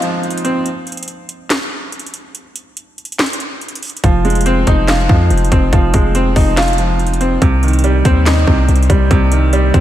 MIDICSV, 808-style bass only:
0, 0, Header, 1, 2, 480
1, 0, Start_track
1, 0, Key_signature, -4, "minor"
1, 0, Tempo, 422535
1, 746, Time_signature, 4, 2, 24, 8
1, 11137, End_track
2, 0, Start_track
2, 0, Title_t, "808-style bass"
2, 0, Program_c, 0, 38
2, 4586, Note_on_c, 0, 29, 111
2, 5277, Note_off_c, 0, 29, 0
2, 5306, Note_on_c, 0, 29, 105
2, 5767, Note_off_c, 0, 29, 0
2, 5786, Note_on_c, 0, 41, 104
2, 6016, Note_off_c, 0, 41, 0
2, 6026, Note_on_c, 0, 29, 104
2, 6256, Note_off_c, 0, 29, 0
2, 6267, Note_on_c, 0, 29, 101
2, 6497, Note_off_c, 0, 29, 0
2, 6506, Note_on_c, 0, 29, 114
2, 6736, Note_off_c, 0, 29, 0
2, 6746, Note_on_c, 0, 29, 102
2, 7207, Note_off_c, 0, 29, 0
2, 7226, Note_on_c, 0, 29, 107
2, 8381, Note_off_c, 0, 29, 0
2, 8426, Note_on_c, 0, 36, 111
2, 9117, Note_off_c, 0, 36, 0
2, 9146, Note_on_c, 0, 39, 107
2, 9607, Note_off_c, 0, 39, 0
2, 9626, Note_on_c, 0, 36, 104
2, 9857, Note_off_c, 0, 36, 0
2, 9866, Note_on_c, 0, 36, 108
2, 10096, Note_off_c, 0, 36, 0
2, 10107, Note_on_c, 0, 36, 103
2, 10337, Note_off_c, 0, 36, 0
2, 10346, Note_on_c, 0, 36, 111
2, 11037, Note_off_c, 0, 36, 0
2, 11066, Note_on_c, 0, 36, 109
2, 11137, Note_off_c, 0, 36, 0
2, 11137, End_track
0, 0, End_of_file